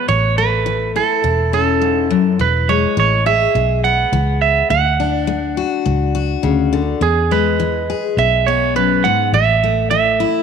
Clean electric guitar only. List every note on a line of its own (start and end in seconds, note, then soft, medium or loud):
0.09 0.35 C#5 medium
0.38 0.91 B4 medium
0.96 1.53 A4 medium
1.54 2.41 A4 medium
2.41 2.70 B4 medium
2.69 2.98 C#5 medium
3.00 3.26 C#5 medium
3.27 3.80 E5 medium
3.84 4.41 F#5 loud
4.42 4.70 E5 medium
4.70 6.40 F#5 medium
7.02 7.32 G#4 medium
7.32 8.21 B4 medium
8.19 8.48 E5 medium
8.47 8.76 C#5 medium
8.76 9.05 B4 medium
9.04 9.34 F#5 loud
9.34 9.89 E5 loud
9.90 10.43 E5 medium